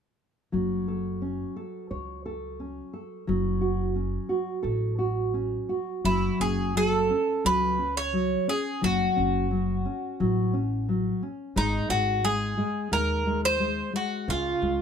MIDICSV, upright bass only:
0, 0, Header, 1, 2, 480
1, 0, Start_track
1, 0, Key_signature, 3, "minor"
1, 0, Tempo, 693642
1, 367, Time_signature, 4, 2, 24, 8
1, 1800, Tempo, 677201
1, 3240, Tempo, 707547
1, 4680, Tempo, 692042
1, 6600, Tempo, 681044
1, 10332, End_track
2, 0, Start_track
2, 0, Title_t, "Upright bass"
2, 0, Program_c, 0, 32
2, 370, Note_on_c, 0, 30, 61
2, 992, Note_off_c, 0, 30, 0
2, 1322, Note_on_c, 0, 37, 57
2, 1940, Note_off_c, 0, 37, 0
2, 2286, Note_on_c, 0, 30, 76
2, 2908, Note_off_c, 0, 30, 0
2, 3245, Note_on_c, 0, 33, 64
2, 3866, Note_off_c, 0, 33, 0
2, 4198, Note_on_c, 0, 30, 76
2, 4355, Note_off_c, 0, 30, 0
2, 4442, Note_on_c, 0, 30, 71
2, 4909, Note_off_c, 0, 30, 0
2, 5160, Note_on_c, 0, 37, 71
2, 5783, Note_off_c, 0, 37, 0
2, 6117, Note_on_c, 0, 30, 74
2, 6275, Note_off_c, 0, 30, 0
2, 6361, Note_on_c, 0, 30, 71
2, 6828, Note_off_c, 0, 30, 0
2, 7080, Note_on_c, 0, 33, 67
2, 7699, Note_off_c, 0, 33, 0
2, 8037, Note_on_c, 0, 32, 84
2, 8190, Note_off_c, 0, 32, 0
2, 8271, Note_on_c, 0, 32, 77
2, 8739, Note_off_c, 0, 32, 0
2, 8993, Note_on_c, 0, 39, 67
2, 9619, Note_off_c, 0, 39, 0
2, 9953, Note_on_c, 0, 37, 81
2, 10112, Note_off_c, 0, 37, 0
2, 10193, Note_on_c, 0, 37, 69
2, 10332, Note_off_c, 0, 37, 0
2, 10332, End_track
0, 0, End_of_file